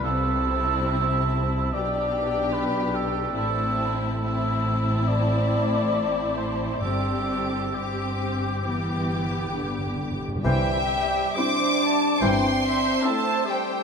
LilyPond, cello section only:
\new Staff \with { instrumentName = "Cello section" } { \clef bass \time 4/4 \key c \major \tempo 4 = 70 c2 b,2 | a,1 | g,4 g,4 e4 d4 | c4 r4 g,4 r4 | }